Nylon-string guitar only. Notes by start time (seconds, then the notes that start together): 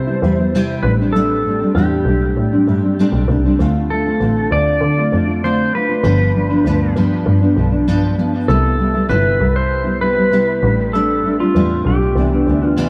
0.07 G3 B3 E4
0.23 C3 G3 B3 E4
0.38 G3 B3 E4
0.54 C3 G3 E4
0.84 A2 G3 C4 D4
0.99 G3 C4 D4
1.14 A2 G3 C4 D4
1.45 A2 G3 C4 D4
1.61 G3 C4 D4
1.76 A2 G3 C4 D4
2.06 A2 G3 C4 D4
2.53 G3 C4 D4
2.67 A2 G3 C4 D4
2.83 G3 C4 D4
2.99 A2 G3 C4 D4
3.28 A2 G3 C4 D4
3.44 G3 C4 D4
3.59 D3 A3 C4 F4
3.90 D3 A3 C4 F4
4.05 A3 C4 F4
4.20 D3 A3 C4 F4
4.51 D3 A3 C4 F4
4.97 A3 C4 F4
5.12 D3 A3 C4 F4
5.27 A3 C4 F4
5.43 D3 A3 C4 F4
5.74 D3 A3 C4 F4
5.88 A3 C4 F4
6.03 G2 F3 B3 D4
6.34 G2 F3 B3 D4
6.50 F3 B3 D4
6.65 G2 F3 B3 D4
6.96 G2 F3 B3 D4
7.41 F3 B3 D4
7.56 G2 F3 B3 D4
7.72 F3 B3 D4
7.87 G2 F3 B3 D4
8.17 G2 F3 B3 D4
8.48 C3 G3 B3 E4
8.78 C3 G3 B3 E4
8.94 G3 B3 E4
9.08 C3 G3 B3 E4
9.39 C3 G3 E4
9.84 G3 B3 E4
10.00 C3 G3 B3 E4
10.16 G3 B3 E4
10.31 C3 G3 B3 E4
10.62 A2 G3 C4 D4
10.93 A2 G3 C4 D4
11.24 A2 G3 C4 D4
11.40 G3 C4 D4
11.55 A2 G3 C4 D4
11.86 A2 G3 C4 D4
12.16 C3 E3 B3 D4
12.32 E3 B3 D4
12.46 C3 E3 B3 D4
12.61 E3 B3 D4
12.76 C3 E3 B3 D4